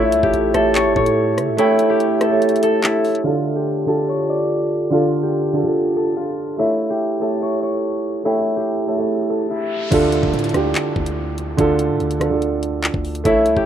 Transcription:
Already playing: A1 A3 E4 G4 A4 C#5 E5
0.12 C#2, closed hi-hat
0.23 A1 G4, kick
0.34 A1, closed hi-hat
0.53 A1 A3 A4 C#5 E5, cross-stick, closed hi-hat
0.75 C#5, clap, closed hi-hat
0.86 G1
0.96 A2 C#5, kick
1.06 closed hi-hat
1.38 C#3, cross-stick, closed hi-hat
1.48 A2
1.57 A3 E4 A4 C#5 G5, closed hi-hat
1.79 closed hi-hat
1.90 G4
2.00 closed hi-hat
2.20 A3 A4 C#5 E5, cross-stick, closed hi-hat
2.30 A3 A4 C#5 E5
2.42 closed hi-hat
2.49 closed hi-hat
2.56 closed hi-hat
2.63 A4, closed hi-hat
2.84 E4, clap
3.05 open hi-hat
3.15 closed hi-hat
3.24 D3 D4 F4 A4
3.56 G4
3.86 D3 D4 F4 G4 A4
4.09 C#5
4.29 D5
4.90 D3 D4 F4 A4
5.23 G4
5.53 D3 D4 F4 A4
5.63 D3 D4 F4 A4
5.96 A4
6.17 F4
6.57 A3 E4 A4 C#5 E5
6.90 G4
7.20 A3 A4 C#5 E5
7.42 C#5
7.63 C#5
8.24 A3 E4 A4 C#5 G5, riser
8.56 G4
8.86 A3 A4 C#5 E5
8.97 A3 A4 C#5 E5
9.30 A4
9.50 E4
9.91 D2 D3 D4 F4 A4, kick, closed hi-hat, crash, downlifter
10.12 closed hi-hat
10.23 D2, kick
10.34 A2, closed hi-hat
10.39 closed hi-hat
10.44 closed hi-hat
10.49 D3, closed hi-hat
10.54 D2 D4 F4 G4, cross-stick, closed hi-hat
10.75 clap, closed hi-hat
10.96 D2, kick
11.06 closed hi-hat
11.38 closed hi-hat
11.57 D2 D3 D4 F4 A4, kick, closed hi-hat
11.79 closed hi-hat
11.90 A2
12.00 D2, closed hi-hat
12.11 closed hi-hat
12.20 D3 D4 F4 A4, cross-stick, closed hi-hat
12.30 D3 D4 F4 A4
12.42 closed hi-hat
12.63 closed hi-hat
12.84 clap
12.94 D2, kick
13.05 open hi-hat
13.15 closed hi-hat
13.24 A1 A3 E4 A4 C#5 E5, kick, closed hi-hat
13.46 C#2, closed hi-hat
13.57 A1 G4, kick

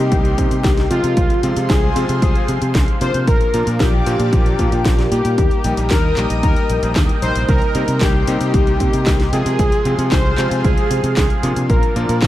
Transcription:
Already playing: C3 G3 A#3 C4 D#4 G4 A#4 D#5 G5 C6
0.12 C2, kick, closed hi-hat
0.25 closed hi-hat
0.38 C3 G3 A#3 C4 D#4, kick, closed hi-hat
0.51 C3, closed hi-hat
0.64 C2, kick, snare, closed hi-hat
0.77 snare, closed hi-hat
0.90 C3 F3 G#3 C4 F4, closed hi-hat
1.04 C3, closed hi-hat
1.17 C2 G#4 C5 F5 C6, kick, closed hi-hat
1.30 closed hi-hat
1.43 C3 F3 G#3 C4 F4, closed hi-hat
1.56 C3, closed hi-hat
1.69 C2 G#4, kick, snare, closed hi-hat
1.96 C3 F3 G#3 C4 F4, closed hi-hat
2.09 C3, closed hi-hat
2.22 C2 G#4, kick, closed hi-hat
2.35 closed hi-hat
2.48 C3 F3 G#3 C4 F4, closed hi-hat
2.62 C3, closed hi-hat
2.75 C2, kick, snare, closed hi-hat
2.88 closed hi-hat
3.01 A#2 C3 F3 A#3 D4 F4 C5, closed hi-hat
3.14 C3, closed hi-hat
3.27 A#1 A#4 D5 D6, kick, closed hi-hat
3.41 closed hi-hat
3.54 A#2 F3 A#3 D4 F4, closed hi-hat
3.67 A#2, closed hi-hat
3.80 A#1 G4, kick, snare, closed hi-hat
4.06 A#2 F3 A#3 D4 F4, closed hi-hat
4.20 A#2, closed hi-hat
4.33 A#1, kick, closed hi-hat
4.46 closed hi-hat
4.59 A#2 F3 A#3 D4 F4, kick, closed hi-hat
4.72 A#2 F3 A#3 D4 F4, closed hi-hat
4.85 A#1, kick, snare, closed hi-hat
4.99 snare, closed hi-hat
5.11 A#2 G3 A#3 D#4 G4, closed hi-hat
5.25 A#2, closed hi-hat
5.38 D#2 D#5 G5 D#6, kick, closed hi-hat
5.51 closed hi-hat
5.64 A#1 G3 A#3 D#4 G4, closed hi-hat
5.77 A#1, closed hi-hat
5.90 D#2 A#4, kick, snare, clap, closed hi-hat
6.17 A#1 G3 A#3 D#4 G4, clap, closed hi-hat
6.30 A#1, closed hi-hat
6.43 D#2 A#4, kick, closed hi-hat
6.56 closed hi-hat
6.70 A#1 G3 A#3 D#4 G4, closed hi-hat
6.83 A#1, closed hi-hat
6.96 D#2, kick, snare, clap, closed hi-hat
7.09 closed hi-hat
7.22 A#1 C3 G3 A#3 C4 D#4 C5, closed hi-hat
7.35 A#1, closed hi-hat
7.49 C2 A#4 C6, kick, closed hi-hat
7.62 closed hi-hat
7.75 C3 G3 A#3 C4 D#4, closed hi-hat
7.88 C3, closed hi-hat
8.01 C2 G4, kick, snare, clap, closed hi-hat
8.27 C3 G3 A#3 C4 D#4, closed hi-hat
8.41 C3, closed hi-hat
8.54 C2, kick, closed hi-hat
8.67 closed hi-hat
8.80 C3 G3 A#3 C4 D#4, kick, closed hi-hat
8.93 C3, closed hi-hat
9.06 C2, kick, snare, clap, closed hi-hat
9.20 snare, closed hi-hat
9.33 C3 F3 G#3 C4 F4 G#4, closed hi-hat
9.46 C3, closed hi-hat
9.59 C2 G#4 C5 F5, kick, closed hi-hat
9.72 closed hi-hat
9.85 C3 F3 G#3 C4 F4, closed hi-hat
9.98 C3, closed hi-hat
10.11 C2 C5, kick, snare, clap, closed hi-hat
10.38 C3 F3 G#3 C4 F4, clap, closed hi-hat
10.51 C3, closed hi-hat
10.64 C2 G#4, kick, closed hi-hat
10.78 closed hi-hat
10.91 C3 F3 G#3 C4 F4, closed hi-hat
11.04 C3, closed hi-hat
11.17 C2 G#4, kick, snare, clap, closed hi-hat
11.30 closed hi-hat
11.43 A#2 C3 F3 A#3 D4 F4, closed hi-hat
11.56 C3, closed hi-hat
11.69 A#1 A#4 D5 D6, kick, closed hi-hat
11.83 closed hi-hat
11.96 A#2 F3 A#3 D4 F4, closed hi-hat
12.09 A#2, closed hi-hat
12.22 A#1, kick, snare, clap, closed hi-hat

